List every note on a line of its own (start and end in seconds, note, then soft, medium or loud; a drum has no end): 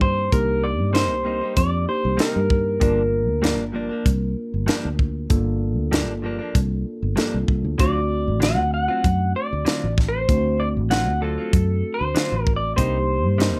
0.00 0.28 G2 medium
0.00 0.28 A#3 medium
0.00 0.28 C4 medium
0.00 0.28 D#4 medium
0.00 0.28 G4 medium
0.00 0.30 C5 medium
0.00 kick medium
0.32 0.81 C2 loud
0.32 1.85 A#3 medium
0.32 1.85 D4 medium
0.32 1.85 D#4 soft
0.32 1.85 G4 medium
0.32 0.64 A#4 medium
0.32 kick loud
0.32 closed hi-hat medium
0.64 0.94 D5 medium
0.81 1.12 G2 medium
0.93 1.14 C3 medium
0.93 1.14 G3 medium
0.93 1.15 A#3 medium
0.93 1.15 D#4 medium
0.93 1.56 C5 medium
0.93 snare medium
0.93 closed hi-hat medium
1.12 1.40 C2 medium
1.24 1.42 C3 soft
1.24 1.42 G3 medium
1.24 1.42 A#3 medium
1.24 1.40 D#4 medium
1.41 1.61 G3 soft
1.41 1.60 A#3 soft
1.41 1.59 D#4 soft
1.57 1.85 F2 medium
1.57 1.88 D5 loud
1.57 kick medium
1.57 closed hi-hat medium
1.88 2.80 A#3 soft
1.88 2.80 D4 soft
1.88 2.81 D#4 soft
1.88 2.82 G4 medium
1.88 2.17 C5 medium
2.05 2.18 C2 medium
2.17 2.38 C3 medium
2.17 2.38 G3 medium
2.17 2.39 A#3 medium
2.17 2.39 D#4 medium
2.17 4.65 A#4 medium
2.17 snare loud
2.17 closed hi-hat medium
2.36 2.77 G2 medium
2.50 kick medium
2.80 3.29 G1 loud
2.80 3.01 G2 medium
2.80 3.01 F3 medium
2.80 5.27 A#3 medium
2.80 3.02 A#3 medium
2.80 5.27 D4 medium
2.80 3.02 D4 medium
2.80 5.26 F4 medium
2.80 5.26 A#4 medium
2.80 kick loud
2.80 closed hi-hat medium
3.29 3.60 D2 medium
3.42 3.63 G2 medium
3.42 3.63 F3 medium
3.42 3.63 A#3 loud
3.42 3.64 D4 medium
3.42 snare medium
3.42 closed hi-hat medium
3.60 3.89 G1 medium
3.72 3.91 G2 medium
3.72 3.91 F3 medium
3.72 3.90 A#3 medium
3.72 3.88 D4 medium
3.89 4.10 F3 soft
3.89 4.09 A#3 soft
3.89 4.08 D4 medium
4.05 4.34 C2 medium
4.05 kick medium
4.05 closed hi-hat medium
4.54 4.67 G1 medium
4.67 4.87 G2 medium
4.67 4.88 F3 medium
4.67 4.88 A#3 medium
4.67 4.89 D4 medium
4.67 snare medium
4.67 closed hi-hat soft
4.85 5.27 D2 medium
4.99 kick medium
5.30 5.78 G1 loud
5.30 7.13 A#3 medium
5.30 7.13 D4 medium
5.30 7.13 F4 medium
5.30 7.13 A4 medium
5.30 kick loud
5.30 closed hi-hat medium
5.78 6.10 D2 medium
5.92 6.12 G2 loud
5.92 6.12 F3 medium
5.92 6.13 A#3 loud
5.92 6.13 D4 loud
5.92 snare medium
5.92 closed hi-hat medium
6.10 6.38 G1 medium
6.22 6.40 G2 medium
6.22 6.41 F3 medium
6.22 6.40 A#3 medium
6.22 6.38 D4 medium
6.39 6.59 F3 soft
6.39 6.58 A#3 medium
6.39 6.57 D4 medium
6.55 6.83 C2 medium
6.55 kick loud
6.55 closed hi-hat medium
7.03 7.16 G1 medium
7.16 7.36 G2 medium
7.16 7.37 F3 medium
7.16 7.37 A#3 medium
7.16 7.80 A#3 medium
7.16 7.79 D4 soft
7.16 7.37 D4 medium
7.16 7.80 F4 soft
7.16 7.80 A4 medium
7.16 snare medium
7.16 closed hi-hat medium
7.34 7.47 C2 medium
7.48 7.64 C2 medium
7.48 kick medium
7.64 7.78 D2 medium
7.78 8.29 D2 medium
7.78 7.99 D3 medium
7.78 7.99 F#3 medium
7.78 10.25 A3 medium
7.78 7.99 C4 medium
7.78 10.25 C4 medium
7.78 10.25 D4 medium
7.78 8.00 F4 medium
7.78 10.25 F#4 medium
7.78 8.43 D5 medium
7.78 kick loud
7.78 closed hi-hat medium
8.28 8.58 A1 medium
8.40 8.61 D3 medium
8.40 8.61 F#3 medium
8.40 8.62 C4 medium
8.40 8.62 F4 medium
8.40 8.73 F#5 medium
8.40 snare medium
8.40 closed hi-hat soft
8.58 8.87 D2 medium
8.74 9.31 F#5 medium
8.88 9.08 F#3 soft
8.88 9.08 C4 soft
8.88 9.07 F4 medium
9.04 9.33 F#2 medium
9.04 kick loud
9.04 closed hi-hat medium
9.36 9.94 D5 medium
9.53 9.65 D2 medium
9.65 9.85 D3 medium
9.65 9.86 F#3 medium
9.65 9.86 C4 medium
9.65 9.87 F4 medium
9.65 snare medium
9.65 closed hi-hat soft
9.84 10.25 A1 medium
9.98 kick loud
9.98 snare soft
10.09 10.61 C5 medium
10.28 10.78 D2 loud
10.28 12.73 A3 medium
10.28 12.74 C4 medium
10.28 12.73 D4 medium
10.28 12.73 F#4 medium
10.28 kick medium
10.28 closed hi-hat medium
10.60 10.68 D5 medium
10.77 11.08 A1 medium
10.90 11.10 D3 medium
10.90 11.11 F#3 medium
10.90 11.11 C4 medium
10.90 11.11 F4 medium
10.90 11.20 F#5 medium
10.90 snare medium
10.90 closed hi-hat medium
11.08 11.37 D2 medium
11.21 11.38 D3 soft
11.21 11.39 F#3 medium
11.21 11.38 C4 medium
11.21 11.37 F4 medium
11.21 11.97 A4 medium
11.38 11.57 F#3 soft
11.38 11.57 C4 soft
11.38 11.56 F4 soft
11.53 11.81 F#2 medium
11.53 kick loud
11.53 closed hi-hat medium
11.94 12.43 C5 medium
12.01 12.14 D2 medium
12.15 12.35 D3 medium
12.15 12.35 F#3 medium
12.15 12.36 C4 medium
12.15 12.36 F4 medium
12.15 snare medium
12.15 closed hi-hat medium
12.32 12.73 A1 medium
12.43 12.56 A#4 medium
12.43 kick medium
12.56 12.76 D5 medium
12.76 13.26 C2 loud
12.76 12.97 C3 medium
12.76 12.97 G3 medium
12.76 13.60 A#3 medium
12.76 12.98 A#3 medium
12.76 13.60 D4 medium
12.76 13.60 D#4 medium
12.76 12.98 D#4 medium
12.76 13.60 G4 medium
12.76 13.60 C5 medium
12.76 kick loud
12.76 closed hi-hat medium
13.26 13.57 G2 medium
13.38 13.59 C3 medium
13.38 13.59 G3 medium
13.38 13.60 A#3 medium
13.38 13.60 D#4 medium
13.38 snare loud
13.38 closed hi-hat medium